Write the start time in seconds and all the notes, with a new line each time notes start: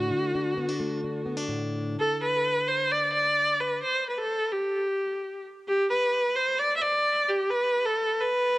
Already playing: A2 A3 D4 F#4
0.10 D3
0.35 D4
0.57 B3
0.69 D4
0.80 A3
1.04 D4
1.26 B3
1.37 D4
1.48 A2
2.00 A4
2.23 B4
2.68 C5
2.91 D5
3.13 D5
3.60 B4
3.83 C5
4.09 B4
4.18 A4
4.52 G4
5.68 G4
5.90 B4
6.36 C5
6.59 D5
6.76 E5
6.81 D5
7.28 G4
7.50 B4
7.85 A4
8.21 B4